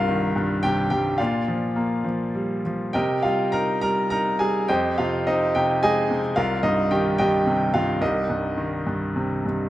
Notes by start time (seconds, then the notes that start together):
Already playing: C2 G2 F4 A#4 F5
0.09 D#3
0.36 G2
0.63 C3 G4 G5
0.90 G2 G4 G5
1.18 A#2 F4 D5 F5
1.48 F3
1.76 A#3
2.04 F3
2.35 G3
2.66 F3
2.93 C3 G4 A#4 D#5 G5
3.23 G3 F4 F5
3.52 D#4 A#4 A#5
3.81 G3 A#4 A#5
4.10 D#4 A#4 A#5
4.39 G3 G#4 G#5
4.68 F2 G4 C5 D#5 G5
4.98 C3 F4 F5
5.27 C4 D#4 D#5
5.55 C3 G4 G5
5.83 G#3 G#4 D#5 G#5
6.11 C3
6.36 C2 F4 A#4 F5
6.63 G2 D#4 D#5
6.91 D#3 G4 G5
7.18 G2 G4 D#5 G5
7.47 C3
7.74 G2 F4 F5
8.01 C2 D#4 G4 A#4 D#5
8.30 G2
8.57 D#3
8.87 G2
9.16 C3
9.46 G2